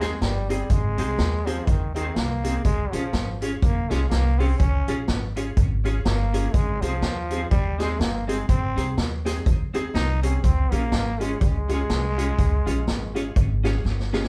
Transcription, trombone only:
Already playing: G#3
0.22 G3
0.50 G3
0.71 G#3
1.48 F3
1.67 D#3
1.95 D#3
2.16 A#3
2.65 G#3
2.93 F3
3.63 A#3
3.91 G#3
4.10 A#3
4.38 C4
4.59 C#4
6.06 A#3
6.54 G#3
6.81 F3
7.51 G3
7.79 G#3
7.99 A#3
8.28 G#3
8.49 C4
9.95 D#4
10.23 C#4
10.43 C4
10.72 A#3
11.20 G#3
11.40 G#3

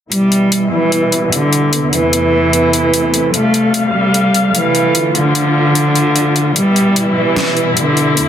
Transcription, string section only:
0.11 B2 E3 G3 E4
1.73 E2 C3 A3 B3 E4
3.34 G3 F5
4.95 D3 F3 F4
6.56 B2 E3 G3 E4
8.17 E2 C3 A3 B3

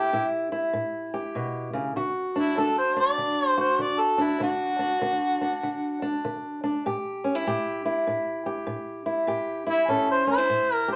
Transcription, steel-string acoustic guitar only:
Already playing: E4 G4
0.13 A2 E4
0.52 E4
0.73 A2
1.14 G4
1.35 B2
1.73 C#3
1.96 D3 F#4
2.36 D4
2.57 D3 D4
2.96 D4
3.18 D3
3.58 F#4
3.79 D3
4.18 D4
4.40 D3 D4
4.79 D4
5.01 D3 D4
5.41 D4
5.63 D3
6.02 D4
6.25 D3
6.64 D4
6.86 A2 G4
7.24 C#4
7.35 E4
7.47 A2 G4
7.85 E4
8.07 A2
8.46 G4
8.67 A2
9.06 E4
9.27 A2 G4
9.67 E4
9.88 A2 C#4
10.27 C#4
10.38 E4
10.49 A2
10.88 G4

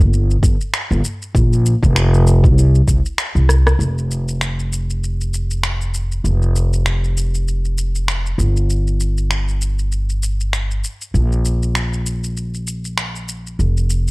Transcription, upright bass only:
0.00 G1
0.43 G1
0.91 G1
1.35 A#1
1.83 F1
2.44 C2
2.88 C2
3.35 C2
3.79 F1
6.24 F1
8.38 G1
11.14 A#1
13.59 F1

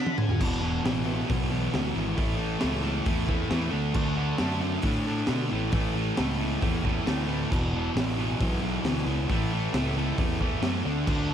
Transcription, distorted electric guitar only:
Already playing: D3 D4
0.40 E2 B2 E3
0.62 E2 B2 E3
0.83 E2 B2 E3
1.05 E2 B2 E3
1.27 E2 B2 E3
1.50 E2 B2 E3
1.73 E2 B2 E3
1.94 E2 B2 E3
2.14 A2 E3 A3
2.36 A2 E3 A3
2.59 A2 E3 A3
2.82 A2 E3 A3
3.05 A2 E3 A3
3.27 A2 E3 A3
3.49 A2 E3 A3
3.70 D3 A3 D4
3.94 D3 A3 D4
4.16 D3 A3 D4
4.39 D3 A3 D4
4.61 D3 A3 D4
4.82 D3 A3 D4
5.07 D3 A3 D4
5.28 D3 A3 D4
5.50 A2 E3 A3
5.73 A2 E3 A3
5.94 A2 E3 A3
6.16 A2 E3 A3
6.38 A2 E3 A3
6.60 A2 E3 A3
6.83 A2 E3 A3
7.05 A2 E3 A3
7.26 A2 E3 A3
7.50 E2 B2 E3
7.74 E2 B2 E3
7.95 E2 B2 E3
8.17 E2 B2 E3
8.39 E2 B2 E3
8.61 E2 B2 E3
8.83 E2 B2 E3
9.05 E2 B2 E3
9.29 A2 E3 A3
9.52 A2 E3 A3
9.74 A2 E3 A3
9.96 A2 E3 A3
10.17 A2 E3 A3
10.40 A2 E3 A3
10.61 A2 E3 A3
10.84 D3 A3 D4
11.06 D3 A3 D4
11.29 D3 A3 D4

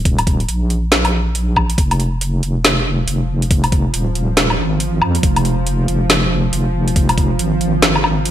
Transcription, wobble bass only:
Already playing: D#1
0.49 A#1
1.78 F1
2.43 F1
3.08 F1
3.94 D#1
4.59 G#1
5.02 F2
5.23 F1
5.88 F1
6.53 F1
7.39 G#1

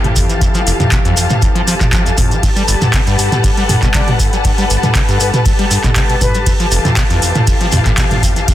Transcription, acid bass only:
0.04 A2
0.16 F2
0.29 E3
0.41 F2
0.54 F3
0.66 F1
0.80 F2
0.92 B2
1.05 F2
1.17 F2
1.30 A2
1.42 F2
1.55 F3
1.67 F3
1.80 F3
1.92 F3
2.06 F2
2.17 F2
2.31 F3
2.43 G2
2.56 G3
2.68 G1
2.81 G2
2.93 C3
3.07 G2
3.19 G2
3.32 B2
3.44 G2
3.57 G3
3.69 G2
3.82 B2
3.94 C3
4.08 B2
4.20 G2
4.33 F#3
4.45 G2
4.58 G3
4.70 G1
4.83 G2
4.95 C3
5.08 G2
5.20 G2
5.34 B2
5.46 G2
5.59 G3
5.71 G2
5.84 B2
5.96 C3
6.09 B2
6.21 G2
6.35 F#3
6.46 F2
6.60 F3
6.71 F1
6.85 F2
6.97 B2
7.10 F2
7.22 F2
7.35 A2
7.47 F2
7.61 F3
7.72 F2
7.86 A2
7.98 B2
8.11 A2
8.23 F2
8.36 E3
8.48 F2

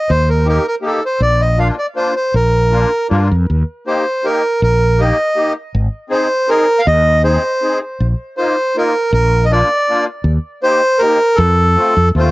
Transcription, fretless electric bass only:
0.10 D#2
1.20 A#1
2.34 A#1
3.11 G2
3.31 F2
3.50 D#2
4.62 A#1
5.75 G#1
6.87 D#2
8.00 A#1
9.12 A#1
10.24 D#2
11.38 F2
11.97 F2
12.15 D#2

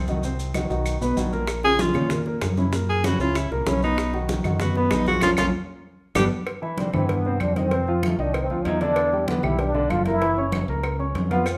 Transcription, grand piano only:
0.09 D#3 D#4 F#4
0.24 C3 C4 C5
0.55 D#3 D#4 F#4
0.70 D#3 D#4 F#4
1.01 B2 B3 B4
1.17 D#3 D#4 F#4
1.32 A#2 A#3 A#4
1.64 C#3 C#4 F4
1.95 C#3 C#4 F4
2.11 A#2 A#3 A#4
2.26 A#2 A#3 A#4
2.58 C#3 C#4 E4
2.73 A#2 A#3 A#4
3.04 C#3 C#4 E4
3.20 C#3 C#4 E4
3.52 A#2 A#3 A#4
3.67 C#3 C#4 E4
3.83 B2 B3 B4
4.13 D#3 D#4 F#4
4.44 D#3 D#4 F#4
4.61 B2 B3 B4
4.76 B2 B3 B4
5.07 F3 F4 G#4
5.22 A#3 C#4 F4
5.38 A#3 C#4 F4
6.15 G3 B3 D4
6.62 E3 E4 E5
6.78 C3 C4 C5
6.94 E3 E4 E5
7.26 C3 C4 C5
7.57 D#3 D#4 D#5
7.72 C3 C4 C5
7.88 F3 F4 F5
8.19 D#3 D#4 D#5
8.50 F3 F4 F5
8.81 D3 D4 D5
9.13 G3 G4 G5
9.28 D3 D4 D5
9.43 G3 G4 G5
9.75 D3 D4 D5
10.07 A#3 A#4 A#5
10.22 E3 E4 E5
10.38 C#4 C#5 C#6
10.69 A#3 A#4 A#5
10.99 C#4 C#5 C#6
11.31 F3 F4 F5

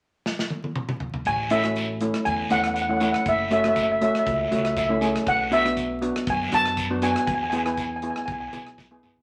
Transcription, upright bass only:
1.26 A1
2.26 E2
2.51 E2
3.26 F#1
4.27 C#2
4.52 C#2
5.27 B1
6.27 F#2
6.52 F#2
7.28 E2
8.28 B1
8.53 B1

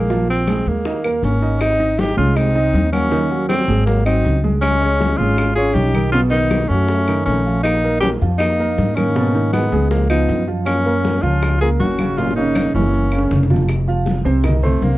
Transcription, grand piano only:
0.10 F3 F4
0.48 G#3 G#4
0.85 D#4 D#5
1.05 A#3 A#4
1.42 D#4 D#5
1.80 D#4 D#5
2.17 G#3 G#4
2.55 D#4 D#5
2.93 F#3 F#4
3.12 D#3 D#4
3.31 F#3 F#4
3.68 G#3 G#4
4.06 F#3 F#4
4.44 G#3 G#4
4.82 C#4 C#5
5.20 G#3 G#4
5.57 C#4 C#5
5.95 D#3 D#4
6.14 B2 B3
6.32 D#3 D#4
6.70 F#3 F#4
7.08 D#3 D#4
7.46 F3 F4
7.84 A#3 A#4
8.22 F3 F4
8.60 A#3 A#4
8.97 D#3 D#4
9.15 B2 B3
9.35 D#3 D#4
9.72 G#3 G#4
10.10 F3 F4
10.48 F3 F4
10.86 A#3 A#4
11.23 F3 F4
11.62 A#3 A#4
12.00 C#3 C#4
12.18 A#2 A#3
12.37 C#3 C#4
12.75 E3 E4
13.13 C#3 C#4
13.50 F3 F4
13.88 F3 F4 F5
14.25 C3 C4 C5
14.44 D#3 D#4 D#5
14.63 C4 C5 C6

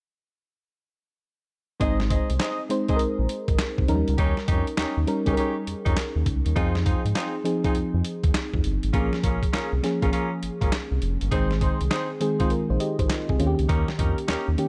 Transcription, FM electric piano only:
1.80 G#3 C4 D#4 C5
2.69 G#3 C4 D#4 C5
2.89 G#3 C4 D#4 G#4
2.96 A#4
3.88 F3 C#4 D#4 A#4
3.94 G3
5.07 G3 C#4 D#4 A#4
5.26 G3 C#4 D#4 G#4
5.34 A#4
6.56 F3 C4 D#4 G#4
7.44 F3 C4 D#4 G#4
7.64 F3 C4 D#4 G#4
8.94 F3 A#3 C#4 G#4
9.83 F3 A#3 C#4 G#4
10.02 F3 A#3 C#4 G#4
11.31 D#3 G#3 C4 G#4
12.20 D#3 G#3 C4 G#4
12.39 D#3 G#3 C4 F4
12.51 A#4
12.70 D#4 C5
12.80 G4 D#5
12.99 D#4 C5
13.30 C4 G#4
13.39 D#3 A#3 C#4 F4
13.47 G4
14.58 D#3 A#3 C#4 G4

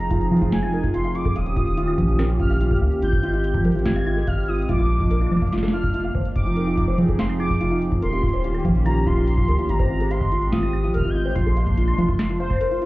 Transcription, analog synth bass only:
Already playing: F1
0.52 F1
0.94 F1
1.36 D#1
1.98 A#1
2.81 C#2
3.02 G#1
3.86 G#1
4.27 G#1
4.69 A#1
5.32 F1
6.15 G#1
6.36 F1
7.19 F1
7.61 F1
8.03 D#1
8.65 A#1
9.48 C#2
9.69 G#1
10.52 G#1
10.94 G#1
11.36 A#1
11.98 F1

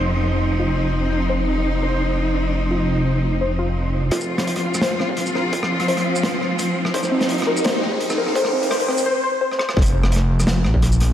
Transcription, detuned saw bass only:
Already playing: F1
4.12 F1
4.65 F1
5.00 A#1
5.53 F1
6.06 F1
6.94 F1
7.47 F1
7.83 A#1
8.35 F1
8.89 F1
9.77 F1
10.30 F1
10.65 A#1

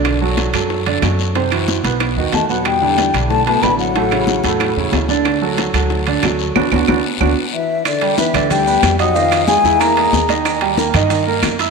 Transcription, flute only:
2.33 A5
2.50 F#5
2.66 G5
3.30 A5
3.46 A5
3.63 B5
3.79 F#5
7.54 E5
7.86 D5
8.18 E5
8.51 G5
8.99 F#5
9.15 F5
9.47 G#5
9.80 A#5

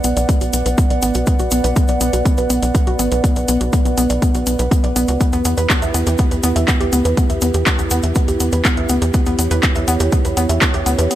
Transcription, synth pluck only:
0.04 B3
0.17 D5
0.29 B3
0.41 F#4
0.53 B3
0.66 B4
0.78 B3
0.90 D5
1.03 B3
1.15 F#4
1.27 B3
1.40 F#4
1.52 B3
1.64 B4
1.76 B3
1.89 D5
2.01 B3
2.13 F#4
2.25 B3
2.38 B4
2.50 B3
2.62 D5
2.75 B3
2.87 F#4
2.99 B3
3.12 B4
3.24 B3
3.36 D5
3.48 B3
3.61 F#4
3.73 B3
3.85 B3
3.98 B3
4.10 D5
4.22 B3
4.35 F#4
4.47 B3
4.59 B4
4.71 B3
4.84 D5
4.96 B3
5.08 F#4
5.21 B3
5.33 B3
5.45 B3
5.58 B4
5.70 B3
5.82 E5
5.94 B3
6.07 G4
6.19 B3
6.31 B4
6.43 B3
6.56 E5
6.68 B3
6.80 G4
6.93 B3
7.05 B4
7.17 B3
7.30 E5
7.42 B3
7.54 G4
7.66 B3
7.79 B3
7.91 B3
8.03 E5
8.16 B3
8.28 G4
8.40 B3
8.53 B4
8.65 B3
8.77 E5
8.89 B3
9.02 G4
9.14 B3
9.26 B3
9.39 B3
9.51 B4
9.63 B3
9.76 E5
9.88 B3
10.00 G4
10.12 B3
10.25 B4
10.37 B3
10.49 E5
10.62 B3
10.74 G4
10.86 B3
10.99 B4
11.11 B3

